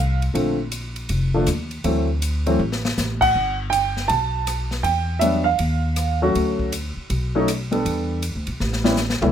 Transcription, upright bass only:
0.00 0.31 C2 medium
0.35 1.06 A#1 medium
1.09 1.45 F1 medium
1.47 1.82 D#2 medium
1.84 2.56 D2 medium
2.59 2.95 A1 medium
2.98 3.33 A1 medium
3.35 4.07 G1 medium
4.10 4.81 B1 medium
4.83 5.56 E2 medium
5.59 6.31 D#2 medium
6.35 6.93 D2 medium
6.97 muted upright bass stroke soft
7.10 7.81 B1 medium
7.85 8.32 E2 medium
8.35 8.47 D2 medium
8.48 8.59 A#1 medium
8.60 9.18 A1 medium
9.21 9.32 C#2 medium

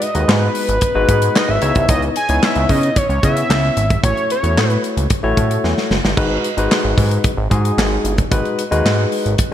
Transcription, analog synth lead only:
0.02 0.30 D#5 medium
0.29 1.38 B4 loud
1.36 1.51 D#5 loud
1.50 1.89 E5 loud
1.90 2.01 D#5 loud
2.17 2.45 G#5 loud
2.43 2.72 E5 medium
2.71 2.99 D#5 loud
2.97 3.23 C#5 loud
3.25 4.00 E5 loud
4.05 4.29 C#5 loud
4.32 4.81 C#5 medium

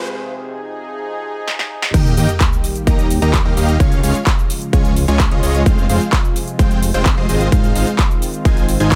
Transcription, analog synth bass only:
1.94 2.15 D#2 loud
2.17 2.27 D#2 loud
2.87 3.20 D#2 loud
3.22 3.43 D#2 medium
3.45 3.55 D#2 loud
3.57 3.78 D#2 medium
3.80 4.01 C#2 loud
4.03 4.13 C#2 loud
4.73 5.06 C#2 loud
5.08 5.29 C#2 loud
5.31 5.41 C#2 loud
5.43 5.64 C#2 medium
5.66 5.87 F1 loud
5.90 5.99 F1 loud
6.59 6.92 F1 loud
6.94 7.15 F1 loud
7.17 7.27 F1 loud
7.29 7.50 G#1 loud
7.52 7.73 G#1 loud
7.76 7.85 G#1 loud
8.45 8.78 G#1 medium
8.80 8.95 G#1 medium

